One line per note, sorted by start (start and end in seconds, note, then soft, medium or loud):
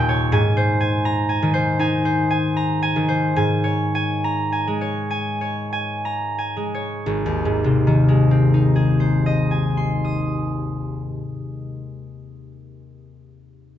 0.00 0.37 D#2 medium
0.00 0.37 A#2 soft
0.00 0.37 G5 medium
0.00 0.37 A#5 soft
0.09 0.36 C#5 medium
0.32 3.35 G#2 medium
0.32 0.79 G#5 medium
0.57 1.52 C5 medium
0.81 1.28 G#5 medium
1.05 1.48 A#5 medium
1.29 1.78 G#5 soft
1.42 2.95 D#3 soft
1.54 2.04 C5 soft
1.79 3.41 D#4 soft
1.79 2.29 G#5 medium
2.05 3.07 C5 medium
2.31 2.81 G#5 medium
2.57 3.02 A#5 soft
2.83 3.35 G#5 medium
2.96 3.41 D#3 soft
3.08 3.41 C5 soft
3.36 7.09 G#2 medium
3.36 3.94 G#5 medium
3.64 4.80 C#5 soft
3.95 4.51 G#5 soft
4.24 4.73 A#5 medium
4.52 5.09 G#5 soft
4.67 6.55 G#3 soft
4.81 5.40 C#5 soft
5.11 5.71 G#5 soft
5.41 6.73 C#5 soft
5.73 6.37 G#5 soft
6.05 6.64 A#5 soft
6.38 9.50 G#5 soft
6.57 8.07 G#3 soft
6.74 7.10 C#5 soft
7.06 10.98 G#1 soft
7.26 11.18 D#2 soft
7.45 11.37 G#2 soft
7.64 11.57 C3 soft
7.87 11.79 D#3 soft
8.08 12.01 G#3 soft
8.31 12.18 C4 soft
8.54 12.18 D#4 soft
8.76 12.17 G#4 soft
9.00 12.17 C5 soft
9.26 12.18 D#5 soft
9.51 12.17 G#5 soft
9.77 12.17 C6 soft
10.04 12.17 D#6 soft